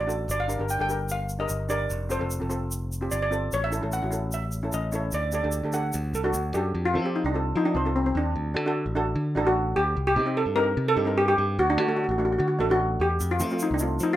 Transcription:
Already playing: A1
0.00 D5
0.07 D4 F#4 A4, shaker
0.28 G1 D5, shaker
0.40 F5
0.48 D4 G4 A#4, shaker
0.59 G1 D4 G4 A#4
0.69 G5, shaker
0.79 G1 D4 G4 A4 G5
0.89 D4 G4 A#4, shaker
1.09 F5, shaker
1.29 shaker
1.39 D4 G4 A#4 D#5
1.49 G1, shaker
1.69 D4 G4 A#4 D5, shaker
1.90 F1, shaker
2.09 C4 F4 A4 C5, shaker
2.19 F1 C4 F4 A4
2.30 shaker
2.40 F1 C4 F4 A4
2.49 C4 F4 A4, shaker
2.71 shaker
2.92 shaker
3.01 C4 F4 G4
3.11 G1 D5, shaker
3.22 D5
3.31 C4 F4 A4, shaker
3.52 A1 C#5, shaker
3.64 E5
3.70 C#4 E4 A4, shaker
3.81 A1 C#4 E4 A4
3.92 F#5, shaker
4.02 A1 C#4 E4 F#4
4.11 C#4 E4 A4, shaker
4.32 E5, shaker
4.52 shaker
4.63 C#4 E4 A4
4.72 A1 D#5, shaker
4.92 C#4 E4 A4 C#5, shaker
5.12 D2 D5, shaker
5.32 D4 G4 A4 D5, shaker
5.43 D2 D4 G4 A4
5.52 shaker
5.63 D2 D4 G4 A4
5.73 D4 G4 A4 F#5, shaker
5.93 D2, shaker
6.13 C2 A4, shaker
6.23 D4 F#4 A4
6.34 D2, shaker
6.54 F#2 D4 F#4 G4 A4, shaker
6.75 F2
6.85 F4
6.94 F3 C4 F4 A4
7.04 C4 F4 G4
7.16 D#4
7.24 C2 D4
7.34 C4 F4 A4
7.56 F3 D#4
7.65 D4
7.74 C2 C4 F4 C5
7.85 C4 F4 A4
7.96 C4
8.06 C4
8.15 D#2 D4
8.36 D2
8.54 D3 D4 F#4 A4
8.66 D4 F#4 A4
8.86 A1
8.95 D4 F#4 A4
9.15 D3
9.35 A1 D4 F#4 A4
9.45 D4 F#4 A4
9.76 D2 G4
9.97 C2
10.07 G4
10.16 C3 C4 D#4 G4
10.26 C4 D#4 G4
10.37 A4
10.46 G2
10.56 C4 D#4 G4 A#4
10.77 C3
10.88 A4
10.95 G2 C4 D#4 G4
11.05 C4 D#4 A#4
11.18 G4
11.28 G4
11.38 G2
11.59 D2 F#4
11.70 D4
11.77 D3 A3 D4 F#4
11.87 A3 D4 F#4 A4
11.96 F#4
12.04 F#4
12.09 A1 F#4
12.18 A3 D4 F#4
12.25 F#4
12.32 F#4
12.39 D3 F#4
12.48 F#4
12.59 A1 A3 D4 F#4 A4
12.70 A3 D4 F#4
13.00 E2 G4
13.20 F2, shaker
13.31 F4
13.40 F3 A3 C4 F4, shaker
13.50 A3 C4 F4, shaker
13.59 D#4, shaker
13.71 C2 D4
13.79 A3 C4 F4, shaker
13.99 F3 D#4, shaker
14.13 F4

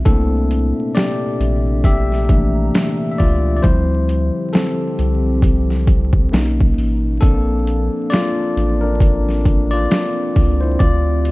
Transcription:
0.05 C2 A#2 C3 A3 A#3 C4 D4 E4 A4 E5, kick, closed hi-hat
0.51 closed hi-hat
0.94 G4 D5, snare, closed hi-hat
1.40 A#1, closed hi-hat
1.84 G4 E5 A#5, kick, closed hi-hat
2.12 snare
2.29 E3 A3 A#3 D4, kick, closed hi-hat
2.75 snare, closed hi-hat
3.12 E5
3.18 C#2 F4 D5, kick, open hi-hat
3.57 D5
3.63 D2 D3 F3 G3 C4 E4 G4 C5, kick, closed hi-hat
4.09 closed hi-hat
4.53 C4 A4, snare, closed hi-hat
4.99 C2, closed hi-hat
5.42 kick, closed hi-hat
5.70 snare
5.87 kick, closed hi-hat
6.13 kick
6.32 B1 B2 A#3 C#4 D#4, snare, closed hi-hat
6.60 kick
6.78 A1, open hi-hat
7.21 A#1 F3 A#3 C4 D4 A4, kick, closed hi-hat
7.67 closed hi-hat
8.10 F4 D5, snare, closed hi-hat
8.57 A1, closed hi-hat
8.81 D4 A#4
9.00 C4, kick, closed hi-hat
9.29 snare
9.45 kick, closed hi-hat
9.71 F4 D5
9.91 snare, closed hi-hat
10.36 C#2, kick, open hi-hat
10.61 E4 C5
10.79 D2 D3 F3 F4 G4 D5 E5, kick, closed hi-hat
11.25 closed hi-hat

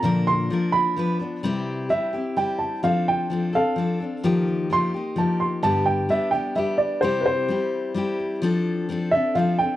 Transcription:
Already playing: A#5
0.03 A#2 D3 F3 A#3 D4 A#4
0.27 C6
0.50 F3 A#3 D4 A#4
0.72 B5
0.96 F3 B3 D4 B4
1.20 F3 B3 D4 B4
1.43 C3 G3 C4 E4 G4
1.89 G3 C4 E4 G4 E5
2.13 C4 E4 G4
2.37 G3 C4 E4 G4 G5
2.59 A5
2.83 F3 C4 D4 A4 F5
3.08 G5
3.30 F3 C4 D4 A4
3.53 C4 D4 A4 F5
3.76 F3 C4 D4 A4
4.00 C4 D4 A4
4.23 D#3 F3 A#3 D#4 G4
4.70 F3 A#3 D#4 G4 C6
4.94 A#3 D#4 G4
5.16 F3 A#3 D#4 G4 A5
5.40 C6
5.63 G2 D3 G3 B3 D4 G4 A5
5.86 G5
6.09 G3 B3 D4 G4 E5
6.31 B3 D4 G4 G5
6.35 G3
6.55 G3 B3 D4 G4 E5
6.78 D5
7.01 C3 G3 C4 E4 G4 C5
7.21 B4
7.26 C5
7.49 G3 C4 E4 G4
7.94 G3 C4 E4 G4
8.42 F3 C4 D4 A4
8.89 F3 C4 D4 A4
9.11 D4 A4 E5
9.16 C4
9.35 F3 C4 D4 A4 F5
9.59 D4 A4 G5
9.63 C4

